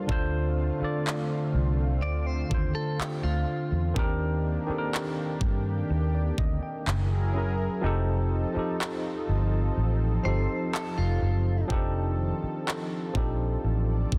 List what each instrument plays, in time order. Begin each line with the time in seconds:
Already playing: tine electric piano G3 D4 F4 A4 A#4 C5, analog synth pad F4
0.07 fingered electric bass D2, tine electric piano D3 D4 F4 A4, analog synth pad D3 A3 C4, kick
0.12 tine electric piano C5
0.79 tine electric piano D3 D4 F4 A4, muted fingered electric bass stroke
0.84 tine electric piano D5
1.07 clap
1.54 fingered electric bass C2
2.02 fingered electric bass D2, clean electric guitar D5
2.26 clean electric guitar C5
2.49 fingered electric bass D#2, tine electric piano D3 D4 F4 A4, kick
2.54 tine electric piano C5
2.75 clean electric guitar A4
2.99 clean electric guitar G4, muted fingered electric bass stroke, clap
3.23 fingered electric bass D2, clean electric guitar F4
3.72 fingered electric bass E2
3.94 fingered electric bass D#2, tine electric piano D#3 C4 D4 G4, analog synth pad D#3 A#3 D4 G4, kick
3.99 tine electric piano A#4
4.67 tine electric piano D#3 C4 D4 G4, muted fingered electric bass stroke
4.72 tine electric piano A4
4.78 tine electric piano A#4
4.95 clap
5.41 fingered electric bass G2, kick
5.90 fingered electric bass D#2
6.15 tine electric piano D5
6.38 fingered electric bass D2, tine electric piano D#5, kick
6.63 tine electric piano G5
6.86 fingered electric bass F#1, analog synth pad F#3 E4 G#4 A#4, clap
7.33 tine electric piano F#3 C#4 E4 G#4
7.38 tine electric piano A#4
7.81 fingered electric bass F1, tine electric piano F3 C4 D#4 G4, analog synth pad F3 C4 D#4 A4
7.86 tine electric piano A4
8.54 tine electric piano F3 C4 D#4 G4, muted fingered electric bass stroke
8.59 tine electric piano A4
8.81 clap
9.29 fingered electric bass G1
9.77 fingered electric bass A1
10.23 fingered electric bass G1, tine electric piano F3 C4 D#4 G4, clean electric guitar C5
10.28 tine electric piano A4
10.74 clean electric guitar A4, clap
10.98 fingered electric bass F1, clean electric guitar F4
11.22 fingered electric bass F#1
11.68 fingered electric bass F1, analog synth pad D#3 F3 A4, tine electric piano F3 C4 D4 D#4 G4, kick
11.73 tine electric piano A4
12.43 muted fingered electric bass stroke
12.68 clap
13.13 fingered electric bass A#1, tine electric piano F3 C4 D4 D#4 G4, kick
13.18 tine electric piano A4
13.64 fingered electric bass A1, analog synth pad D5
14.12 fingered electric bass G1, kick